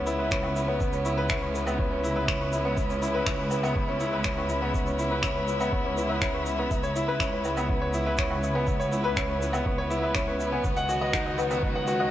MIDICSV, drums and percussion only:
0, 0, Header, 1, 2, 480
1, 0, Start_track
1, 0, Key_signature, 4, "minor"
1, 0, Tempo, 491803
1, 791, Time_signature, 4, 2, 24, 8
1, 11817, End_track
2, 0, Start_track
2, 0, Title_t, "Drums"
2, 65, Note_on_c, 9, 82, 78
2, 162, Note_off_c, 9, 82, 0
2, 304, Note_on_c, 9, 82, 58
2, 306, Note_on_c, 9, 36, 104
2, 311, Note_on_c, 9, 26, 92
2, 401, Note_off_c, 9, 82, 0
2, 403, Note_off_c, 9, 36, 0
2, 408, Note_off_c, 9, 26, 0
2, 418, Note_on_c, 9, 77, 62
2, 516, Note_off_c, 9, 77, 0
2, 548, Note_on_c, 9, 82, 73
2, 645, Note_off_c, 9, 82, 0
2, 785, Note_on_c, 9, 36, 110
2, 785, Note_on_c, 9, 82, 63
2, 883, Note_off_c, 9, 36, 0
2, 883, Note_off_c, 9, 82, 0
2, 904, Note_on_c, 9, 82, 46
2, 1002, Note_off_c, 9, 82, 0
2, 1028, Note_on_c, 9, 82, 75
2, 1126, Note_off_c, 9, 82, 0
2, 1259, Note_on_c, 9, 82, 52
2, 1265, Note_on_c, 9, 36, 101
2, 1266, Note_on_c, 9, 26, 103
2, 1356, Note_off_c, 9, 82, 0
2, 1363, Note_off_c, 9, 36, 0
2, 1364, Note_off_c, 9, 26, 0
2, 1514, Note_on_c, 9, 82, 74
2, 1612, Note_off_c, 9, 82, 0
2, 1628, Note_on_c, 9, 77, 70
2, 1630, Note_on_c, 9, 82, 56
2, 1725, Note_off_c, 9, 77, 0
2, 1728, Note_off_c, 9, 82, 0
2, 1746, Note_on_c, 9, 36, 114
2, 1843, Note_off_c, 9, 36, 0
2, 1993, Note_on_c, 9, 82, 68
2, 2090, Note_off_c, 9, 82, 0
2, 2226, Note_on_c, 9, 36, 114
2, 2229, Note_on_c, 9, 26, 101
2, 2231, Note_on_c, 9, 82, 51
2, 2324, Note_off_c, 9, 36, 0
2, 2326, Note_off_c, 9, 26, 0
2, 2329, Note_off_c, 9, 82, 0
2, 2464, Note_on_c, 9, 82, 76
2, 2562, Note_off_c, 9, 82, 0
2, 2706, Note_on_c, 9, 82, 65
2, 2707, Note_on_c, 9, 36, 104
2, 2803, Note_off_c, 9, 82, 0
2, 2805, Note_off_c, 9, 36, 0
2, 2832, Note_on_c, 9, 82, 46
2, 2930, Note_off_c, 9, 82, 0
2, 2951, Note_on_c, 9, 82, 87
2, 3048, Note_off_c, 9, 82, 0
2, 3186, Note_on_c, 9, 26, 100
2, 3188, Note_on_c, 9, 36, 110
2, 3190, Note_on_c, 9, 82, 63
2, 3284, Note_off_c, 9, 26, 0
2, 3285, Note_off_c, 9, 36, 0
2, 3287, Note_off_c, 9, 82, 0
2, 3423, Note_on_c, 9, 77, 57
2, 3423, Note_on_c, 9, 82, 82
2, 3520, Note_off_c, 9, 77, 0
2, 3520, Note_off_c, 9, 82, 0
2, 3544, Note_on_c, 9, 77, 66
2, 3554, Note_on_c, 9, 82, 58
2, 3642, Note_off_c, 9, 77, 0
2, 3652, Note_off_c, 9, 82, 0
2, 3667, Note_on_c, 9, 36, 110
2, 3765, Note_off_c, 9, 36, 0
2, 3905, Note_on_c, 9, 82, 67
2, 4003, Note_off_c, 9, 82, 0
2, 4139, Note_on_c, 9, 82, 57
2, 4142, Note_on_c, 9, 26, 100
2, 4146, Note_on_c, 9, 36, 104
2, 4237, Note_off_c, 9, 82, 0
2, 4239, Note_off_c, 9, 26, 0
2, 4244, Note_off_c, 9, 36, 0
2, 4274, Note_on_c, 9, 77, 58
2, 4372, Note_off_c, 9, 77, 0
2, 4383, Note_on_c, 9, 82, 71
2, 4481, Note_off_c, 9, 82, 0
2, 4627, Note_on_c, 9, 36, 110
2, 4630, Note_on_c, 9, 82, 60
2, 4724, Note_off_c, 9, 36, 0
2, 4728, Note_off_c, 9, 82, 0
2, 4750, Note_on_c, 9, 82, 45
2, 4847, Note_off_c, 9, 82, 0
2, 4869, Note_on_c, 9, 82, 75
2, 4966, Note_off_c, 9, 82, 0
2, 5102, Note_on_c, 9, 26, 92
2, 5106, Note_on_c, 9, 36, 101
2, 5113, Note_on_c, 9, 82, 60
2, 5199, Note_off_c, 9, 26, 0
2, 5204, Note_off_c, 9, 36, 0
2, 5211, Note_off_c, 9, 82, 0
2, 5345, Note_on_c, 9, 82, 67
2, 5442, Note_off_c, 9, 82, 0
2, 5471, Note_on_c, 9, 82, 69
2, 5475, Note_on_c, 9, 77, 62
2, 5568, Note_off_c, 9, 82, 0
2, 5572, Note_off_c, 9, 77, 0
2, 5587, Note_on_c, 9, 36, 111
2, 5684, Note_off_c, 9, 36, 0
2, 5830, Note_on_c, 9, 82, 69
2, 5927, Note_off_c, 9, 82, 0
2, 6067, Note_on_c, 9, 26, 91
2, 6068, Note_on_c, 9, 36, 106
2, 6068, Note_on_c, 9, 82, 52
2, 6165, Note_off_c, 9, 26, 0
2, 6165, Note_off_c, 9, 36, 0
2, 6165, Note_off_c, 9, 82, 0
2, 6305, Note_on_c, 9, 82, 74
2, 6403, Note_off_c, 9, 82, 0
2, 6548, Note_on_c, 9, 36, 105
2, 6548, Note_on_c, 9, 82, 66
2, 6645, Note_off_c, 9, 36, 0
2, 6646, Note_off_c, 9, 82, 0
2, 6668, Note_on_c, 9, 82, 43
2, 6766, Note_off_c, 9, 82, 0
2, 6792, Note_on_c, 9, 82, 79
2, 6890, Note_off_c, 9, 82, 0
2, 7027, Note_on_c, 9, 36, 102
2, 7028, Note_on_c, 9, 26, 82
2, 7036, Note_on_c, 9, 82, 61
2, 7125, Note_off_c, 9, 26, 0
2, 7125, Note_off_c, 9, 36, 0
2, 7134, Note_off_c, 9, 82, 0
2, 7265, Note_on_c, 9, 82, 74
2, 7273, Note_on_c, 9, 77, 54
2, 7363, Note_off_c, 9, 82, 0
2, 7371, Note_off_c, 9, 77, 0
2, 7387, Note_on_c, 9, 77, 69
2, 7391, Note_on_c, 9, 82, 69
2, 7485, Note_off_c, 9, 77, 0
2, 7489, Note_off_c, 9, 82, 0
2, 7508, Note_on_c, 9, 36, 108
2, 7605, Note_off_c, 9, 36, 0
2, 7744, Note_on_c, 9, 82, 76
2, 7841, Note_off_c, 9, 82, 0
2, 7980, Note_on_c, 9, 82, 50
2, 7988, Note_on_c, 9, 36, 99
2, 7990, Note_on_c, 9, 26, 96
2, 8077, Note_off_c, 9, 82, 0
2, 8086, Note_off_c, 9, 36, 0
2, 8088, Note_off_c, 9, 26, 0
2, 8106, Note_on_c, 9, 77, 63
2, 8204, Note_off_c, 9, 77, 0
2, 8230, Note_on_c, 9, 82, 76
2, 8328, Note_off_c, 9, 82, 0
2, 8462, Note_on_c, 9, 82, 58
2, 8467, Note_on_c, 9, 36, 108
2, 8560, Note_off_c, 9, 82, 0
2, 8565, Note_off_c, 9, 36, 0
2, 8593, Note_on_c, 9, 82, 49
2, 8691, Note_off_c, 9, 82, 0
2, 8708, Note_on_c, 9, 82, 67
2, 8806, Note_off_c, 9, 82, 0
2, 8947, Note_on_c, 9, 36, 97
2, 8948, Note_on_c, 9, 82, 52
2, 8950, Note_on_c, 9, 26, 82
2, 9045, Note_off_c, 9, 36, 0
2, 9045, Note_off_c, 9, 82, 0
2, 9048, Note_off_c, 9, 26, 0
2, 9193, Note_on_c, 9, 82, 73
2, 9291, Note_off_c, 9, 82, 0
2, 9303, Note_on_c, 9, 77, 77
2, 9308, Note_on_c, 9, 82, 59
2, 9400, Note_off_c, 9, 77, 0
2, 9406, Note_off_c, 9, 82, 0
2, 9427, Note_on_c, 9, 36, 106
2, 9524, Note_off_c, 9, 36, 0
2, 9671, Note_on_c, 9, 82, 62
2, 9768, Note_off_c, 9, 82, 0
2, 9902, Note_on_c, 9, 26, 89
2, 9908, Note_on_c, 9, 36, 101
2, 9911, Note_on_c, 9, 82, 51
2, 10000, Note_off_c, 9, 26, 0
2, 10005, Note_off_c, 9, 36, 0
2, 10009, Note_off_c, 9, 82, 0
2, 10150, Note_on_c, 9, 82, 71
2, 10248, Note_off_c, 9, 82, 0
2, 10385, Note_on_c, 9, 82, 55
2, 10388, Note_on_c, 9, 36, 105
2, 10482, Note_off_c, 9, 82, 0
2, 10486, Note_off_c, 9, 36, 0
2, 10507, Note_on_c, 9, 82, 44
2, 10605, Note_off_c, 9, 82, 0
2, 10628, Note_on_c, 9, 82, 75
2, 10725, Note_off_c, 9, 82, 0
2, 10867, Note_on_c, 9, 26, 95
2, 10868, Note_on_c, 9, 36, 95
2, 10874, Note_on_c, 9, 82, 52
2, 10965, Note_off_c, 9, 26, 0
2, 10966, Note_off_c, 9, 36, 0
2, 10971, Note_off_c, 9, 82, 0
2, 11106, Note_on_c, 9, 77, 62
2, 11111, Note_on_c, 9, 82, 67
2, 11203, Note_off_c, 9, 77, 0
2, 11209, Note_off_c, 9, 82, 0
2, 11231, Note_on_c, 9, 77, 64
2, 11232, Note_on_c, 9, 82, 61
2, 11329, Note_off_c, 9, 77, 0
2, 11330, Note_off_c, 9, 82, 0
2, 11349, Note_on_c, 9, 36, 100
2, 11446, Note_off_c, 9, 36, 0
2, 11587, Note_on_c, 9, 82, 67
2, 11685, Note_off_c, 9, 82, 0
2, 11817, End_track
0, 0, End_of_file